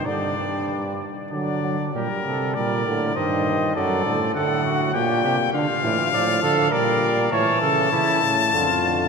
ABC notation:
X:1
M:3/4
L:1/8
Q:1/4=100
K:Gm
V:1 name="Trumpet"
d3 z d2 | B2 d2 e2 | d2 ^f2 g2 | f4 d2 |
a6 |]
V:2 name="Trumpet"
D3 z D2 | G A B2 c2 | A2 A ^F G G | F2 d A B2 |
^c A =E z F2 |]
V:3 name="Trombone" clef=bass
D, G,2 z ^F, F, | G,2 G, D, E,2 | ^F, D, A,,2 B,,2 | D, =E, F,2 G,2 |
=E,2 E, ^C, D, D, |]
V:4 name="Bass trombone" clef=bass
G,,3 z D,2 | B,, C, B,, A,, G,,2 | ^F,, A,, D,2 B,, C, | D, A,, A,, D, B,,2 |
A,, ^C, C, A,, F,,2 |]